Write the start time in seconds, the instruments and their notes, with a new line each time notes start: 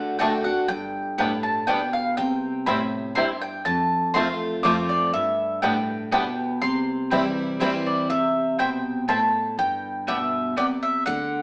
Already playing: upright bass D2, steel-string acoustic guitar D3 A3 D4 F#4, mandolin F#5
0.19 steel-string acoustic guitar D3 A3 D4 F#4, mandolin A3 F#4 D5 G5 A5, five-string banjo A3 D4
0.44 steel-string acoustic guitar D4 F#4, mandolin F#5
0.68 upright bass G1, steel-string acoustic guitar G2, mandolin G5
1.18 steel-string acoustic guitar A2, five-string banjo G3 B3 D4, mandolin B3 G4 D5 G5
1.43 mandolin A5
1.67 steel-string acoustic guitar B2, five-string banjo G3 B3 D4, mandolin B3 G4 D5 G5
1.93 mandolin F5
2.17 upright bass C2, steel-string acoustic guitar C3, mandolin G5
2.66 steel-string acoustic guitar A2, five-string banjo G3 C4 E4, mandolin C4 E4 C5 G5 B5
3.15 steel-string acoustic guitar G2, five-string banjo G3 C4 E4, mandolin C4 E4 C5 G5 C6
3.41 mandolin G5
3.65 upright bass F2, steel-string acoustic guitar F2, mandolin A5
4.14 upright bass E2, steel-string acoustic guitar A3 C4 F4, five-string banjo A3 C4 F4, mandolin C4 F4 C5 A5 C6
4.63 upright bass F2, steel-string acoustic guitar F3 A3 C4 F4, five-string banjo A3 C4 F4, mandolin C4 F4 C5 A5 D6
4.89 mandolin D5
5.13 steel-string acoustic guitar G2, upright bass G2, mandolin E5
5.62 steel-string acoustic guitar A2, five-string banjo G3 B3 D4, mandolin B3 G4 D5 G5
6.12 steel-string acoustic guitar B2, five-string banjo G3 B3 D4, mandolin B3 G4 D5 G5
6.62 upright bass C2, steel-string acoustic guitar C3, mandolin C6
7.10 steel-string acoustic guitar E3 G3 C4 E4, five-string banjo G3 C4 E4, mandolin C4 E4 C5 G5
7.60 steel-string acoustic guitar E3 G3 C4 E4, five-string banjo G3 C4 E4, mandolin C4 E4 C5 G5
7.86 mandolin D5
8.10 upright bass C2, steel-string acoustic guitar C3, mandolin E5
8.58 steel-string acoustic guitar B2, mandolin C4 E4 C5 G5
9.08 steel-string acoustic guitar A2, mandolin C4 E4 C5 G5 A5
9.58 upright bass G1, steel-string acoustic guitar G2, mandolin G5
10.07 steel-string acoustic guitar B2, mandolin B3 G4 D5 E5 G5
10.56 steel-string acoustic guitar C3, mandolin B3 G4 D5 G5
10.83 mandolin E5
11.06 upright bass D2, steel-string acoustic guitar D3, mandolin F#5